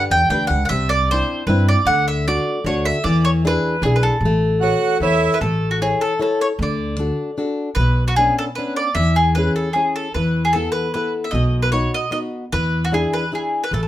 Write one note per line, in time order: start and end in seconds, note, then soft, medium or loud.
0.00 0.22 D4 medium
0.00 0.22 G4 medium
0.00 0.23 B4 medium
0.10 0.28 E2 medium
0.10 0.29 G5 loud
0.29 0.47 D2 medium
0.29 0.63 D4 medium
0.29 0.63 G4 soft
0.29 0.63 B4 medium
0.29 0.47 G5 medium
0.47 0.67 C#2 medium
0.47 0.64 F#5 loud
0.65 0.89 E5 loud
0.65 0.69 F#5 medium
0.70 1.21 C2 medium
0.70 1.09 C3 medium
0.89 1.09 D5 loud
1.11 1.42 C4 medium
1.11 1.43 D4 soft
1.11 1.43 E4 medium
1.11 1.46 C5 loud
1.47 1.73 G2 loud
1.47 1.79 C4 medium
1.47 1.80 D4 soft
1.47 1.80 E4 medium
1.47 1.68 B4 medium
1.68 1.86 D5 medium
1.85 2.37 D2 loud
1.85 2.25 D3 medium
1.85 2.05 F#5 loud
2.08 2.25 E5 medium
2.27 2.58 A3 soft
2.27 2.58 D4 soft
2.27 2.59 F#4 medium
2.27 2.63 D5 loud
2.64 2.90 D2 medium
2.64 2.97 A3 medium
2.64 2.97 D4 soft
2.64 2.98 F#4 medium
2.64 2.84 C#5 medium
2.85 3.03 E5 loud
3.04 3.55 E2 medium
3.04 3.43 E3 medium
3.04 3.22 D5 loud
3.25 3.30 C#5 loud
3.45 3.75 D4 medium
3.45 3.76 E4 medium
3.45 3.75 G#4 medium
3.45 3.82 B4 loud
3.82 4.08 B1 medium
3.82 4.15 D4 medium
3.82 4.16 E4 medium
3.82 3.96 G#4 medium
3.82 4.16 G#4 medium
3.96 4.02 B4 medium
4.03 4.97 A4 medium
4.21 4.72 A1 medium
4.25 4.62 A3 medium
4.61 4.98 F#4 loud
4.61 4.94 A4 medium
4.61 4.94 B4 soft
4.61 4.94 C#5 medium
5.00 5.26 E2 medium
5.00 5.38 E4 loud
5.00 5.33 A4 medium
5.00 5.33 B4 soft
5.00 5.34 C#5 medium
5.34 5.41 B4 medium
5.41 5.92 A1 medium
5.41 5.80 A3 medium
5.41 5.69 A4 medium
5.71 5.80 F#4 medium
5.82 6.12 E4 medium
5.82 6.01 G#4 medium
5.82 6.13 A4 soft
5.82 6.13 C#5 medium
6.01 6.19 A4 medium
6.19 6.51 E4 medium
6.19 6.51 A4 soft
6.19 6.39 A4 medium
6.19 6.52 C#5 medium
6.41 6.46 C#5 medium
6.59 7.10 D2 loud
6.59 6.98 D3 medium
6.59 7.35 D5 medium
6.99 7.30 D4 soft
6.99 7.31 F#4 soft
6.99 7.30 A4 medium
7.38 7.69 D4 soft
7.38 7.70 F#4 soft
7.38 7.69 A4 soft
7.75 8.27 B1 loud
7.75 8.03 B4 medium
7.80 8.16 B2 medium
8.08 8.16 F#4 medium
8.16 8.49 B3 soft
8.16 8.49 C#4 soft
8.16 8.49 D4 medium
8.16 8.34 G#4 loud
8.38 8.43 A4 medium
8.55 8.89 B3 soft
8.55 8.89 C#4 soft
8.55 8.89 D4 soft
8.55 8.74 B4 medium
8.76 8.94 D5 medium
8.95 9.47 E2 loud
8.95 9.34 E3 medium
8.95 9.15 E5 loud
9.16 9.36 G#4 medium
9.35 9.68 C#4 medium
9.35 9.68 E4 soft
9.35 9.69 G#4 medium
9.35 9.55 B4 medium
9.56 9.74 A4 medium
9.73 10.07 C#4 soft
9.73 10.07 E4 soft
9.73 9.95 G#4 medium
9.77 10.08 G#4 soft
9.96 10.14 A4 medium
10.14 10.67 E2 medium
10.14 10.54 E3 medium
10.14 10.42 B4 medium
10.45 10.54 G#4 medium
10.53 10.87 B3 medium
10.53 10.87 E4 soft
10.53 10.71 A4 medium
10.53 10.87 A4 medium
10.72 10.91 B4 medium
10.94 11.26 B3 soft
10.94 11.27 E4 soft
10.94 11.27 A4 soft
10.94 11.12 B4 medium
11.24 11.32 E5 medium
11.31 11.84 B1 medium
11.31 11.73 B2 medium
11.31 11.62 D#5 medium
11.62 11.71 B4 medium
11.72 12.05 B3 soft
11.72 12.05 D#4 soft
11.72 12.05 F#4 medium
11.72 11.91 C#5 medium
11.94 12.11 D#5 medium
12.11 12.43 B3 medium
12.11 12.44 D#4 soft
12.11 12.44 F#4 medium
12.11 12.18 D#5 medium
12.52 13.04 E2 medium
12.52 12.91 E3 medium
12.52 12.83 B4 loud
12.85 12.93 F#4 medium
12.92 13.24 D4 soft
12.92 13.24 E4 soft
12.92 13.25 G#4 medium
12.92 13.14 G#4 medium
13.13 13.31 B4 medium
13.32 13.64 D4 soft
13.32 13.64 E4 soft
13.32 13.65 G#4 medium
13.32 13.61 G#4 medium
13.64 13.72 B4 medium
13.71 13.88 A1 medium
13.71 13.88 A3 medium
13.71 13.80 A4 medium
13.83 13.87 A4 soft